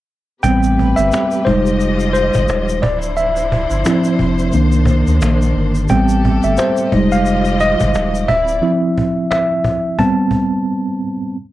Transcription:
0.43 A1 C3 G3 A3 B3 C4 G4 B4 G5, cajon bass, shaker
0.63 shaker
0.79 cajon bass
0.96 G1 E5, shaker
1.12 cajon slap, shaker
1.31 shaker
1.45 F1 F3 G3 G#3 D#4 F4 C5 D#5, cajon bass
1.66 shaker
1.80 cajon slap, shaker
2.00 shaker
2.13 C5, shaker
2.34 G1, cajon bass, shaker
2.48 D#1, cajon slap, shaker
2.69 shaker
2.82 D1 F3 D4 E4 C5 D5, cajon bass
3.02 shaker
3.17 E5, cajon slap, shaker
3.36 shaker
3.52 cajon bass
3.70 G1, shaker
3.85 F3 C4 E4, cajon slap, shaker
4.04 shaker
4.19 F1, cajon bass
4.39 cajon slap, shaker
4.52 C2 D#3 A#3 D4, shaker
4.72 shaker
4.85 cajon bass, shaker
5.07 D2, cajon slap, shaker
5.21 A#1, cajon slap, shaker
5.42 shaker
5.54 G1, cajon slap
5.75 shaker
5.88 A1 C3 G3 A3 B3 C4 G4 A4 G5, cajon bass, shaker
6.09 shaker
6.25 cajon bass
6.43 G1 E5, shaker
6.57 C5, cajon slap, shaker
6.77 shaker
6.91 F1 F3 G3 G#3 D#4 F4 G4 D#5, cajon bass
7.12 F5, cajon slap, shaker
7.26 shaker
7.45 shaker
7.60 D#5, shaker
7.80 G1, cajon bass, shaker
7.94 D#1, cajon slap, shaker
8.15 shaker
8.28 D1 C4 E4 D5 E5, cajon bass
8.48 shaker
8.62 F3 C4 E4
8.98 cajon bass
9.16 cajon slap
9.31 E5, cajon slap
9.64 cajon bass
9.99 G3 B3 C4 A5, cajon bass
10.31 cajon bass
10.54 cajon slap

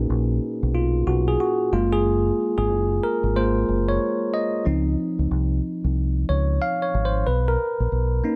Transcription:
Already playing: A#3 C#4 D#4 F#4 G#4
0.10 A#1
0.63 B1
0.75 F4
1.07 B1 F#4
1.28 G#4
1.40 F#4
1.73 F#1 G#3 A#3 F4
1.93 G#4
2.58 G#1 G#4
2.70 F#1
3.04 A#4
3.24 G#1
3.36 G#3 A#3 F4 C5
3.69 F#1
3.89 C#5
4.34 D#5
4.65 C#2 F3 C4 D#4
5.19 C#2
5.31 C2
5.84 C2
6.29 C#2 C#5
6.62 F5
6.82 C#5
6.94 G#1
7.05 C5
7.27 B1 B4
7.48 A#4
7.80 A#1
7.92 B1
8.24 A#3 C#4 D#4

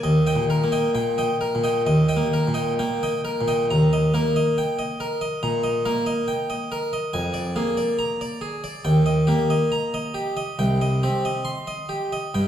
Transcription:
0.03 D#2 D#5
0.27 D#5 G5
0.36 A#2
0.50 A#4
0.64 A#3
0.72 D#5 G5
0.95 A#2 G5
1.18 D#5 G5
1.41 A#4
1.55 A#2
1.64 D#5 G5
1.86 D#2 D#5
2.09 D#5 G5
2.17 A#3
2.33 A#4
2.48 A#2
2.54 D#5 G5
2.79 A#3 G5
3.03 D#5 G5
3.25 A#4
3.41 A#2
3.48 D#5 G5
3.71 D#2 A#5
3.93 D#5
4.14 A#3 A#4
4.36 D#5
4.58 G5
4.79 D#5
5.00 A#4
5.21 D#5
5.43 A#2 A#5
5.63 D#5
5.85 A#3 A#4
6.06 D#5
6.28 G5
6.50 D#5
6.72 A#4
6.93 D#5
7.13 F2 G#5
7.34 D5
7.56 A#3 G#4
7.77 D5
7.99 A#5
8.21 D5
8.41 G#4
8.64 D5
8.85 D#2 G5
9.06 D#5
9.27 A#3 G4
9.50 D#5
9.72 A#5
9.94 D#5
10.14 G4
10.37 D#5
10.59 C2 G5
10.81 D#5
11.03 C4 G4
11.25 D#5
11.45 C6
11.67 D#5
11.89 G4
12.12 D#5
12.34 G2 G5

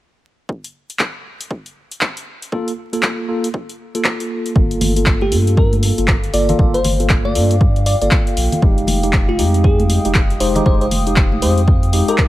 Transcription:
0.49 kick
0.64 closed hi-hat
0.90 closed hi-hat
0.99 kick, clap
1.41 closed hi-hat
1.51 kick
1.66 closed hi-hat
1.91 closed hi-hat
2.01 kick, clap
2.17 closed hi-hat
2.42 closed hi-hat
2.52 A#3 F4 A4, kick
2.68 closed hi-hat
2.93 A#3 F4 A4, closed hi-hat
3.03 kick, clap
3.28 A#3 F4 A4
3.44 closed hi-hat
3.54 kick
3.69 closed hi-hat
3.95 A#3 F4 A4, closed hi-hat
4.04 kick, clap
4.20 closed hi-hat
4.46 closed hi-hat
4.55 G1 A#3 F4 A4 F5 G5, kick
4.71 closed hi-hat
4.81 open hi-hat, high conga, low conga
4.96 A#3 F4 A4, closed hi-hat
5.06 kick, clap
5.21 G4, high conga
5.32 G2 A#3 F4 A4, open hi-hat
5.47 closed hi-hat
5.57 A#4, kick
5.73 closed hi-hat, high conga
5.83 open hi-hat
5.98 G1 A#3 F4 A4, closed hi-hat
6.08 kick, clap
6.24 closed hi-hat
6.34 G1 A#3 F4 A4 D5, open hi-hat
6.49 A#3 F4 A4, closed hi-hat, low conga
6.59 G1 A#3 F4 A4, kick
6.74 C5, closed hi-hat
6.84 open hi-hat, high conga, low conga
7.00 A#3 F4 A4, closed hi-hat
7.09 kick, clap
7.25 D5, high conga
7.35 G2 A#3 F4 A4, open hi-hat
7.51 closed hi-hat
7.61 kick
7.76 closed hi-hat
7.86 D5, open hi-hat
8.01 G1 A#3 F4 A4 D5, closed hi-hat
8.11 kick, clap
8.27 closed hi-hat
8.37 A#1, open hi-hat
8.52 closed hi-hat, low conga
8.62 F1 G#3 D#4 G4 D#6, kick
8.78 closed hi-hat
8.87 open hi-hat, high conga, low conga
9.03 G#3 D#4 G4, closed hi-hat
9.13 kick, clap
9.29 F4, high conga
9.38 F2 G#3 D#4 G4, open hi-hat
9.54 closed hi-hat
9.64 G#4, kick
9.79 closed hi-hat, high conga
9.90 open hi-hat
10.05 F1 G#3 D#4 G4, closed hi-hat
10.14 kick, clap
10.30 closed hi-hat
10.40 F1 G#3 D#4 G4 C5, open hi-hat
10.55 G#3 D#4 G4, closed hi-hat, low conga
10.66 F1 G#3 D#4 G4 C5, kick
10.81 C5, closed hi-hat
10.91 open hi-hat, high conga, low conga
11.07 G#3 D#4 G4, closed hi-hat
11.16 kick, clap
11.32 high conga
11.42 F2 G#3 D#4 G4 C5, open hi-hat
11.58 closed hi-hat
11.68 kick
11.83 closed hi-hat
11.93 G#3 D#4 G4, open hi-hat
12.08 G#3 D#4 G4 A#4, closed hi-hat
12.18 kick, clap

